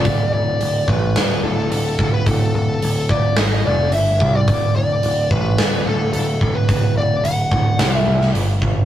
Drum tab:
HH |o---o---o---o---|o---o---o---o---|o---o---o---o---|o---o---o---o---|
SD |--------o-------|--------o-------|--------o-------|--------o--o----|
BD |o-----o-------o-|o-----o-------o-|o-----o-------o-|o-----o-------o-|